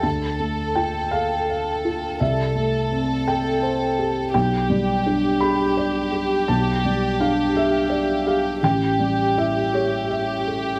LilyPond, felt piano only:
\new Staff \with { instrumentName = "Felt piano" } { \time 6/8 \key g \mixolydian \tempo 4. = 56 << { a''4 g''8 f''4. | e''4. g''8 r4 | g''4. b''4. | a''4 f''8 e''4 f''8 |
g''4 e''8 cis''4. | } \\ { d,8 a8 f'8 a'8 f''8 f'8 | c,8 a8 c'8 a'8 c''8 g'8 | b,,8 g8 d'8 g'8 d''8 g'8 | b,,8 g8 d'8 g'8 d''8 g'8 |
a,,8 g8 e'8 g'8 e''8 a'8 | } >> }